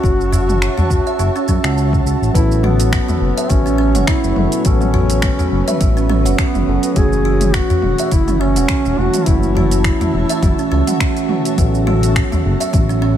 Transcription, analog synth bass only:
0, 0, Header, 1, 2, 480
1, 0, Start_track
1, 0, Tempo, 576923
1, 34, Time_signature, 4, 2, 24, 8
1, 10959, End_track
2, 0, Start_track
2, 0, Title_t, "Analog synth bass"
2, 0, Program_c, 0, 38
2, 31, Note_on_c, 0, 30, 99
2, 570, Note_off_c, 0, 30, 0
2, 750, Note_on_c, 0, 28, 93
2, 838, Note_off_c, 0, 28, 0
2, 989, Note_on_c, 0, 30, 81
2, 1077, Note_off_c, 0, 30, 0
2, 1230, Note_on_c, 0, 42, 81
2, 1318, Note_off_c, 0, 42, 0
2, 1363, Note_on_c, 0, 37, 104
2, 1601, Note_off_c, 0, 37, 0
2, 1606, Note_on_c, 0, 37, 89
2, 1675, Note_off_c, 0, 37, 0
2, 1708, Note_on_c, 0, 37, 90
2, 1797, Note_off_c, 0, 37, 0
2, 1842, Note_on_c, 0, 33, 80
2, 1913, Note_off_c, 0, 33, 0
2, 1954, Note_on_c, 0, 33, 103
2, 2491, Note_off_c, 0, 33, 0
2, 2670, Note_on_c, 0, 30, 92
2, 2758, Note_off_c, 0, 30, 0
2, 2913, Note_on_c, 0, 33, 85
2, 3285, Note_on_c, 0, 30, 92
2, 3297, Note_off_c, 0, 33, 0
2, 3354, Note_off_c, 0, 30, 0
2, 3526, Note_on_c, 0, 30, 85
2, 3595, Note_off_c, 0, 30, 0
2, 3631, Note_on_c, 0, 30, 95
2, 3718, Note_off_c, 0, 30, 0
2, 3872, Note_on_c, 0, 33, 92
2, 4410, Note_off_c, 0, 33, 0
2, 4591, Note_on_c, 0, 30, 96
2, 4678, Note_off_c, 0, 30, 0
2, 4832, Note_on_c, 0, 33, 89
2, 5207, Note_on_c, 0, 30, 95
2, 5220, Note_off_c, 0, 33, 0
2, 5275, Note_off_c, 0, 30, 0
2, 5445, Note_on_c, 0, 30, 85
2, 5514, Note_off_c, 0, 30, 0
2, 5552, Note_on_c, 0, 30, 92
2, 5639, Note_off_c, 0, 30, 0
2, 5794, Note_on_c, 0, 30, 100
2, 6331, Note_off_c, 0, 30, 0
2, 6516, Note_on_c, 0, 28, 88
2, 6601, Note_off_c, 0, 28, 0
2, 6753, Note_on_c, 0, 30, 88
2, 7128, Note_on_c, 0, 28, 97
2, 7141, Note_off_c, 0, 30, 0
2, 7196, Note_off_c, 0, 28, 0
2, 7365, Note_on_c, 0, 28, 91
2, 7435, Note_off_c, 0, 28, 0
2, 7467, Note_on_c, 0, 28, 97
2, 7556, Note_off_c, 0, 28, 0
2, 7714, Note_on_c, 0, 30, 102
2, 8251, Note_off_c, 0, 30, 0
2, 8433, Note_on_c, 0, 28, 93
2, 8520, Note_off_c, 0, 28, 0
2, 8671, Note_on_c, 0, 30, 85
2, 8758, Note_off_c, 0, 30, 0
2, 8915, Note_on_c, 0, 37, 100
2, 9000, Note_off_c, 0, 37, 0
2, 9634, Note_on_c, 0, 33, 96
2, 10171, Note_off_c, 0, 33, 0
2, 10358, Note_on_c, 0, 30, 94
2, 10442, Note_off_c, 0, 30, 0
2, 10595, Note_on_c, 0, 33, 86
2, 10959, Note_off_c, 0, 33, 0
2, 10959, End_track
0, 0, End_of_file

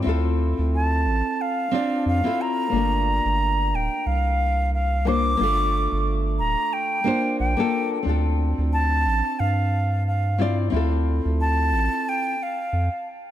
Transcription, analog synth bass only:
0, 0, Header, 1, 2, 480
1, 0, Start_track
1, 0, Tempo, 666667
1, 44, Time_signature, 4, 2, 24, 8
1, 9584, End_track
2, 0, Start_track
2, 0, Title_t, "Analog synth bass"
2, 0, Program_c, 0, 38
2, 47, Note_on_c, 0, 38, 103
2, 389, Note_off_c, 0, 38, 0
2, 424, Note_on_c, 0, 38, 94
2, 765, Note_on_c, 0, 33, 99
2, 776, Note_off_c, 0, 38, 0
2, 881, Note_off_c, 0, 33, 0
2, 1485, Note_on_c, 0, 41, 85
2, 1601, Note_off_c, 0, 41, 0
2, 1964, Note_on_c, 0, 31, 99
2, 2308, Note_off_c, 0, 31, 0
2, 2343, Note_on_c, 0, 31, 101
2, 2685, Note_on_c, 0, 26, 97
2, 2696, Note_off_c, 0, 31, 0
2, 2801, Note_off_c, 0, 26, 0
2, 2927, Note_on_c, 0, 36, 84
2, 3860, Note_off_c, 0, 36, 0
2, 3891, Note_on_c, 0, 31, 92
2, 4231, Note_off_c, 0, 31, 0
2, 4265, Note_on_c, 0, 31, 94
2, 4606, Note_on_c, 0, 26, 99
2, 4617, Note_off_c, 0, 31, 0
2, 4722, Note_off_c, 0, 26, 0
2, 5329, Note_on_c, 0, 34, 87
2, 5443, Note_off_c, 0, 34, 0
2, 5805, Note_on_c, 0, 38, 103
2, 6148, Note_off_c, 0, 38, 0
2, 6182, Note_on_c, 0, 38, 94
2, 6525, Note_on_c, 0, 33, 104
2, 6536, Note_off_c, 0, 38, 0
2, 6641, Note_off_c, 0, 33, 0
2, 6770, Note_on_c, 0, 43, 83
2, 7701, Note_off_c, 0, 43, 0
2, 7727, Note_on_c, 0, 38, 99
2, 8069, Note_off_c, 0, 38, 0
2, 8105, Note_on_c, 0, 38, 94
2, 8443, Note_on_c, 0, 33, 102
2, 8453, Note_off_c, 0, 38, 0
2, 8560, Note_off_c, 0, 33, 0
2, 9166, Note_on_c, 0, 41, 89
2, 9282, Note_off_c, 0, 41, 0
2, 9584, End_track
0, 0, End_of_file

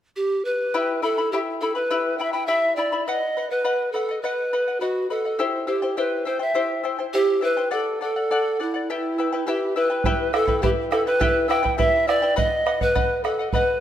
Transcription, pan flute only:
0, 0, Header, 1, 2, 480
1, 0, Start_track
1, 0, Key_signature, 1, "minor"
1, 0, Tempo, 581959
1, 594, Time_signature, 2, 2, 24, 8
1, 11384, End_track
2, 0, Start_track
2, 0, Title_t, "Pan flute"
2, 0, Program_c, 0, 75
2, 134, Note_on_c, 0, 67, 88
2, 370, Note_on_c, 0, 71, 79
2, 383, Note_off_c, 0, 67, 0
2, 843, Note_off_c, 0, 71, 0
2, 849, Note_on_c, 0, 69, 70
2, 1066, Note_off_c, 0, 69, 0
2, 1088, Note_on_c, 0, 67, 79
2, 1141, Note_off_c, 0, 67, 0
2, 1328, Note_on_c, 0, 69, 78
2, 1441, Note_on_c, 0, 71, 81
2, 1454, Note_off_c, 0, 69, 0
2, 1795, Note_off_c, 0, 71, 0
2, 1800, Note_on_c, 0, 79, 74
2, 1841, Note_on_c, 0, 76, 67
2, 1853, Note_off_c, 0, 79, 0
2, 1917, Note_on_c, 0, 79, 83
2, 1929, Note_off_c, 0, 76, 0
2, 2032, Note_on_c, 0, 76, 89
2, 2044, Note_off_c, 0, 79, 0
2, 2275, Note_on_c, 0, 74, 78
2, 2287, Note_off_c, 0, 76, 0
2, 2518, Note_off_c, 0, 74, 0
2, 2526, Note_on_c, 0, 75, 90
2, 2890, Note_on_c, 0, 71, 84
2, 2902, Note_off_c, 0, 75, 0
2, 3231, Note_off_c, 0, 71, 0
2, 3236, Note_on_c, 0, 69, 74
2, 3478, Note_on_c, 0, 71, 82
2, 3490, Note_off_c, 0, 69, 0
2, 3963, Note_on_c, 0, 66, 73
2, 3975, Note_off_c, 0, 71, 0
2, 4200, Note_off_c, 0, 66, 0
2, 4205, Note_on_c, 0, 69, 78
2, 4466, Note_off_c, 0, 69, 0
2, 4680, Note_on_c, 0, 67, 71
2, 4933, Note_on_c, 0, 71, 69
2, 4946, Note_off_c, 0, 67, 0
2, 5162, Note_off_c, 0, 71, 0
2, 5167, Note_on_c, 0, 72, 71
2, 5278, Note_off_c, 0, 72, 0
2, 5290, Note_on_c, 0, 76, 77
2, 5632, Note_off_c, 0, 76, 0
2, 5884, Note_on_c, 0, 67, 89
2, 6109, Note_off_c, 0, 67, 0
2, 6132, Note_on_c, 0, 71, 92
2, 6353, Note_off_c, 0, 71, 0
2, 6367, Note_on_c, 0, 69, 80
2, 6590, Note_off_c, 0, 69, 0
2, 6622, Note_on_c, 0, 69, 81
2, 7110, Note_on_c, 0, 64, 69
2, 7123, Note_off_c, 0, 69, 0
2, 7804, Note_off_c, 0, 64, 0
2, 7809, Note_on_c, 0, 67, 79
2, 8031, Note_off_c, 0, 67, 0
2, 8055, Note_on_c, 0, 71, 75
2, 8533, Note_on_c, 0, 69, 86
2, 8545, Note_off_c, 0, 71, 0
2, 8761, Note_off_c, 0, 69, 0
2, 8766, Note_on_c, 0, 67, 83
2, 8820, Note_off_c, 0, 67, 0
2, 9004, Note_on_c, 0, 69, 87
2, 9115, Note_off_c, 0, 69, 0
2, 9125, Note_on_c, 0, 71, 96
2, 9458, Note_off_c, 0, 71, 0
2, 9479, Note_on_c, 0, 79, 88
2, 9716, Note_on_c, 0, 76, 93
2, 9729, Note_off_c, 0, 79, 0
2, 9966, Note_on_c, 0, 74, 88
2, 9978, Note_off_c, 0, 76, 0
2, 10201, Note_on_c, 0, 75, 98
2, 10213, Note_off_c, 0, 74, 0
2, 10575, Note_on_c, 0, 71, 89
2, 10587, Note_off_c, 0, 75, 0
2, 10915, Note_off_c, 0, 71, 0
2, 10920, Note_on_c, 0, 69, 71
2, 11140, Note_off_c, 0, 69, 0
2, 11151, Note_on_c, 0, 71, 84
2, 11375, Note_off_c, 0, 71, 0
2, 11384, End_track
0, 0, End_of_file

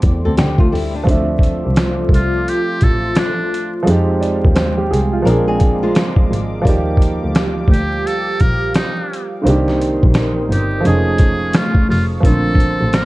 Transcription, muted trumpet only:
0, 0, Header, 1, 2, 480
1, 0, Start_track
1, 0, Key_signature, -1, "minor"
1, 0, Tempo, 697674
1, 736, Time_signature, 4, 2, 24, 8
1, 8978, End_track
2, 0, Start_track
2, 0, Title_t, "Muted trumpet"
2, 0, Program_c, 0, 59
2, 1473, Note_on_c, 0, 65, 88
2, 1714, Note_on_c, 0, 67, 103
2, 1725, Note_off_c, 0, 65, 0
2, 1951, Note_on_c, 0, 69, 95
2, 1961, Note_off_c, 0, 67, 0
2, 2192, Note_on_c, 0, 62, 87
2, 2203, Note_off_c, 0, 69, 0
2, 2577, Note_off_c, 0, 62, 0
2, 5311, Note_on_c, 0, 67, 96
2, 5550, Note_on_c, 0, 69, 114
2, 5560, Note_off_c, 0, 67, 0
2, 5786, Note_on_c, 0, 70, 97
2, 5797, Note_off_c, 0, 69, 0
2, 6017, Note_off_c, 0, 70, 0
2, 6022, Note_on_c, 0, 63, 80
2, 6384, Note_off_c, 0, 63, 0
2, 7240, Note_on_c, 0, 67, 83
2, 7479, Note_on_c, 0, 68, 99
2, 7489, Note_off_c, 0, 67, 0
2, 7955, Note_on_c, 0, 65, 86
2, 7966, Note_off_c, 0, 68, 0
2, 8186, Note_off_c, 0, 65, 0
2, 8189, Note_on_c, 0, 65, 79
2, 8294, Note_off_c, 0, 65, 0
2, 8432, Note_on_c, 0, 69, 100
2, 8905, Note_on_c, 0, 70, 100
2, 8916, Note_off_c, 0, 69, 0
2, 8978, Note_off_c, 0, 70, 0
2, 8978, End_track
0, 0, End_of_file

